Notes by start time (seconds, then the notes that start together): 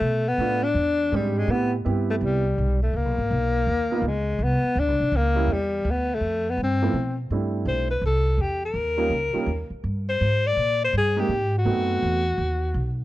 Already playing: A3
0.01 B2
0.28 B3
0.38 A2 A3 B3 D4 F4
0.64 D4
0.74 E2
1.12 G#2 G3 G#3 C4 D4 G4
1.38 G#3
1.48 A2 B3 C4 E4 G4
1.85 G2 B3 C4 E4 G4
2.10 A3
2.21 C2 G3
2.58 B1
2.83 A3
2.93 C#2 A#3
3.05 B1
3.18 G#1
3.31 B1
3.67 D#2
3.91 A#3 B3 D#4 F4
4.02 C#2
4.08 G#3
4.39 C2
4.44 B3
4.63 muted upright bass stroke
4.75 D2 D4
4.88 C2
5.00 B1
5.12 C#2
5.16 A#3
5.35 G3 A#3 C#4 E4
5.47 E2
5.53 G3
5.85 D2
5.91 B3
6.14 A3
6.21 F2
6.50 B3
6.57 G2
6.63 C4
6.82 F3 A3 B3 E4
6.93 B2
7.30 G2 G3 A3 C4 D4 E4
7.65 B1 C5
7.91 B4
8.01 C2
8.06 A4
8.38 E2
8.42 G4
8.65 A#4
8.74 D#2
8.97 G3 A#3 C#4 D#4 F4
9.10 C#2
9.33 G3 A#3 C#4 D#4 F4, muted upright bass stroke
9.46 D#2
9.70 muted upright bass stroke
9.84 G2
10.09 C5
10.21 G#2
10.47 D5
10.57 A#2
10.84 C5
10.93 G2
10.97 G#4
11.16 G#3 A#3 C4 D#4 G4
11.29 G#2
11.58 F#4
11.65 F#2 A3 B3 C4 D#4 F#4
12.02 E2
12.38 D#2
12.74 B1